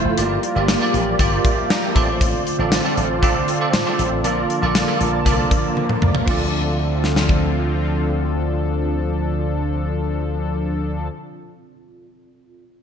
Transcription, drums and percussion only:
0.18 closed hi-hat
0.43 closed hi-hat
0.68 snare, closed hi-hat, tambourine
0.94 closed hi-hat
1.19 kick, closed hi-hat
1.45 kick, closed hi-hat
1.70 snare, closed hi-hat, tambourine
1.96 kick, closed hi-hat
2.21 kick, closed hi-hat
2.47 closed hi-hat
2.72 snare, closed hi-hat, tambourine
2.97 closed hi-hat
3.23 kick, closed hi-hat
3.48 closed hi-hat
3.73 snare, closed hi-hat, tambourine
3.99 closed hi-hat
4.24 closed hi-hat
4.50 closed hi-hat
4.75 snare, closed hi-hat, tambourine
5.01 closed hi-hat
5.26 kick, closed hi-hat
5.51 kick, closed hi-hat
5.77 high tom
5.89 mid tom
6.02 mid tom
6.15 floor tom
6.27 kick, crash
7.04 snare
7.16 snare
7.29 kick

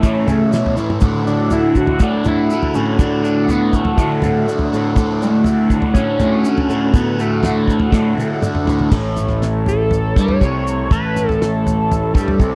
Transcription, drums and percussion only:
0.03 kick, maracas
0.28 floor tom, mid tom, maracas
0.53 snare, maracas
0.66 floor tom
0.77 maracas
0.90 mid tom
1.01 kick, floor tom, maracas
1.27 maracas
1.51 floor tom, maracas
1.75 kick, maracas
1.87 floor tom
2.00 kick, maracas
2.24 floor tom, mid tom, maracas
2.50 maracas
2.63 floor tom
2.74 maracas
2.99 kick, floor tom, maracas
3.24 maracas
3.48 floor tom, maracas
3.73 kick, maracas
3.85 floor tom
3.98 kick, maracas
4.22 floor tom, mid tom, maracas
4.49 maracas
4.59 floor tom
4.74 maracas
4.96 kick, floor tom, maracas
5.22 maracas
5.44 floor tom, maracas
5.70 kick, maracas
5.82 floor tom
5.95 kick, maracas
6.20 floor tom, mid tom, maracas
6.45 maracas
6.58 floor tom
6.70 maracas
6.94 kick, floor tom, maracas
7.19 maracas
7.43 snare, floor tom, mid tom, maracas
7.68 kick, maracas
7.80 floor tom
7.92 kick, snare, maracas
8.18 high tom, maracas
8.42 mid tom, maracas
8.55 mid tom
8.67 floor tom, maracas
8.79 floor tom
8.91 kick, floor tom, crash, maracas
9.17 mid tom, maracas
9.28 floor tom, maracas
9.42 snare, maracas
9.66 floor tom, maracas
9.91 floor tom, maracas
10.16 kick, maracas
10.28 floor tom
10.41 kick, maracas
10.67 maracas
10.91 kick, floor tom, maracas
11.16 mid tom, maracas
11.29 floor tom, maracas
11.42 snare, maracas
11.67 floor tom, maracas
11.92 floor tom, maracas
12.15 kick, maracas
12.28 floor tom
12.40 kick, maracas

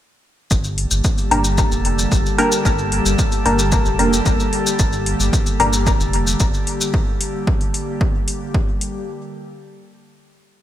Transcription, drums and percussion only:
0.51 kick, maracas
0.64 maracas
0.78 open hi-hat
0.91 maracas
1.04 kick, maracas
1.18 open hi-hat, maracas
1.31 open hi-hat
1.44 maracas
1.58 kick, maracas
1.72 maracas
1.85 open hi-hat
1.99 maracas
2.12 kick, maracas
2.26 maracas
2.38 open hi-hat
2.52 maracas
2.65 kick, maracas
2.78 maracas
2.92 open hi-hat
3.06 maracas
3.19 kick, maracas
3.32 open hi-hat, maracas
3.46 open hi-hat
3.59 maracas
3.72 kick, maracas
3.85 maracas
3.99 open hi-hat
4.13 maracas
4.26 kick, maracas
4.40 maracas
4.53 open hi-hat
4.67 maracas
4.79 kick, maracas
4.93 maracas
5.06 open hi-hat
5.20 maracas
5.33 kick, maracas
5.46 open hi-hat, maracas
5.60 open hi-hat
5.73 maracas
5.87 kick, maracas
6.00 maracas
6.13 open hi-hat
6.27 maracas
6.40 kick, maracas
6.54 maracas
6.67 open hi-hat
6.81 maracas
6.94 kick
7.21 open hi-hat
7.47 kick
7.61 open hi-hat
7.74 open hi-hat
8.01 kick
8.28 open hi-hat
8.54 kick
8.81 open hi-hat

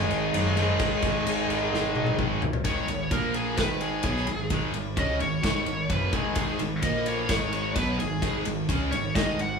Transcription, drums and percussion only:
0.11 crash
0.34 crash
0.57 crash
0.79 kick, crash
1.02 kick, crash
1.27 crash
1.50 crash
1.74 snare
1.95 high tom
2.06 high tom
2.19 kick, mid tom
2.42 floor tom
2.53 floor tom
2.65 kick, ride
2.88 ride
3.11 kick, ride
3.34 ride
3.57 kick, snare, ride
3.81 ride
4.03 kick, ride
4.16 snare
4.27 ride
4.50 kick, ride
4.74 ride
4.97 kick, ride
5.20 ride
5.43 kick, snare, ride
5.66 ride
5.90 kick, ride
6.13 kick, ride
6.35 kick, ride
6.59 ride
6.82 kick, ride
7.06 ride
7.29 kick, snare, ride
7.53 ride
7.76 kick, ride
8.00 ride
8.22 kick, ride
8.45 ride
8.69 kick, ride
8.92 ride
9.15 kick, snare, ride
9.39 ride

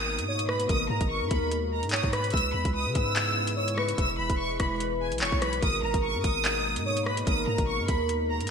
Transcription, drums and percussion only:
0.19 closed hi-hat
0.39 closed hi-hat
0.49 cross-stick
0.60 closed hi-hat
0.69 kick, closed hi-hat
1.01 kick, closed hi-hat
1.31 kick, closed hi-hat
1.51 closed hi-hat
1.83 closed hi-hat
1.89 clap, closed hi-hat
1.96 closed hi-hat
2.03 kick
2.13 cross-stick, closed hi-hat
2.24 closed hi-hat
2.30 kick, closed hi-hat
2.37 closed hi-hat
2.65 kick, closed hi-hat
2.95 kick, closed hi-hat
3.16 clap, closed hi-hat
3.47 closed hi-hat
3.68 closed hi-hat
3.78 cross-stick
3.88 closed hi-hat
3.98 kick, closed hi-hat
4.30 kick, closed hi-hat
4.60 kick, cross-stick, closed hi-hat
4.80 closed hi-hat
5.12 closed hi-hat
5.18 clap, closed hi-hat
5.25 closed hi-hat
5.32 kick
5.42 cross-stick, closed hi-hat
5.53 closed hi-hat
5.63 kick, closed hi-hat
5.94 kick, closed hi-hat
6.24 kick, closed hi-hat
6.45 clap, closed hi-hat
6.76 closed hi-hat
6.97 closed hi-hat
7.06 cross-stick
7.17 closed hi-hat
7.27 kick, closed hi-hat
7.58 kick, closed hi-hat
7.88 kick, closed hi-hat
8.09 closed hi-hat
8.41 closed hi-hat
8.47 closed hi-hat

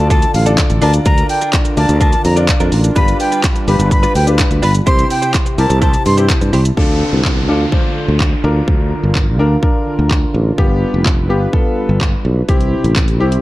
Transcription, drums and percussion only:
0.10 kick, closed hi-hat, shaker
0.22 closed hi-hat, shaker
0.34 open hi-hat, shaker
0.46 closed hi-hat, shaker
0.58 kick, clap, closed hi-hat, shaker
0.70 closed hi-hat, shaker
0.82 open hi-hat, shaker
0.94 closed hi-hat, shaker
1.06 kick, closed hi-hat, shaker
1.18 closed hi-hat, shaker
1.29 open hi-hat, shaker
1.41 closed hi-hat, shaker
1.53 kick, clap, closed hi-hat, shaker
1.65 closed hi-hat, shaker
1.77 open hi-hat, shaker
1.89 closed hi-hat, shaker
2.01 kick, closed hi-hat, shaker
2.13 closed hi-hat, shaker
2.25 open hi-hat, shaker
2.37 closed hi-hat, shaker
2.48 kick, clap, closed hi-hat, shaker
2.60 closed hi-hat, shaker
2.72 open hi-hat, shaker
2.84 closed hi-hat, shaker
2.96 kick, closed hi-hat, shaker
3.08 closed hi-hat, shaker
3.20 open hi-hat, shaker
3.32 closed hi-hat, shaker
3.44 kick, clap, closed hi-hat, shaker
3.56 closed hi-hat, shaker
3.68 open hi-hat, shaker
3.80 closed hi-hat, shaker
3.91 kick, closed hi-hat, shaker
4.03 closed hi-hat, shaker
4.15 open hi-hat, shaker
4.27 closed hi-hat, shaker
4.39 kick, clap, closed hi-hat, shaker
4.51 closed hi-hat, shaker
4.63 open hi-hat, shaker
4.75 closed hi-hat, shaker
4.87 kick, closed hi-hat, shaker
4.99 closed hi-hat, shaker
5.10 open hi-hat, shaker
5.22 closed hi-hat, shaker
5.34 kick, clap, closed hi-hat, shaker
5.46 closed hi-hat, shaker
5.58 open hi-hat, shaker
5.70 closed hi-hat, shaker
5.82 kick, closed hi-hat, shaker
5.94 closed hi-hat, shaker
6.06 open hi-hat, shaker
6.18 closed hi-hat, shaker
6.29 kick, clap, closed hi-hat, shaker
6.41 closed hi-hat, shaker
6.53 open hi-hat, shaker
6.65 closed hi-hat, shaker
6.77 kick
7.25 kick, clap
7.72 kick
8.20 kick, clap
8.68 kick
9.15 kick, clap
9.63 kick
10.11 kick, clap
10.58 kick
11.06 kick, clap
11.53 kick
12.01 kick, clap
12.49 kick, closed hi-hat
12.61 closed hi-hat
12.84 closed hi-hat
12.96 kick, clap, closed hi-hat
13.08 closed hi-hat
13.32 closed hi-hat

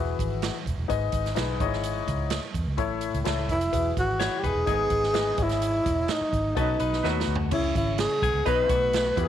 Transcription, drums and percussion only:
0.19 kick, closed hi-hat
0.42 snare, closed hi-hat
0.66 kick, closed hi-hat
0.90 kick, closed hi-hat
1.12 kick, closed hi-hat
1.26 snare, closed hi-hat
1.36 snare, closed hi-hat
1.60 kick, closed hi-hat
1.73 snare
1.84 closed hi-hat
2.08 kick, closed hi-hat
2.30 snare, closed hi-hat
2.54 kick, closed hi-hat
2.78 kick, closed hi-hat
3.01 closed hi-hat
3.14 closed hi-hat
3.25 snare, closed hi-hat
3.49 kick, closed hi-hat
3.61 closed hi-hat
3.73 kick, closed hi-hat
3.97 kick, closed hi-hat
4.20 snare, closed hi-hat
4.44 kick, closed hi-hat
4.67 kick, closed hi-hat
4.90 kick, closed hi-hat
5.03 snare
5.14 snare, closed hi-hat
5.38 kick, closed hi-hat
5.49 snare, closed hi-hat
5.62 closed hi-hat
5.86 kick, closed hi-hat
6.08 snare, closed hi-hat
6.33 kick, closed hi-hat
6.57 kick, closed hi-hat
6.80 closed hi-hat
6.93 snare
7.04 snare
7.20 snare
7.36 floor tom
7.51 kick, crash
7.75 kick, closed hi-hat
7.98 snare, closed hi-hat
8.22 kick, closed hi-hat
8.46 kick, closed hi-hat
8.69 kick, closed hi-hat
8.93 snare, closed hi-hat
9.17 kick, closed hi-hat

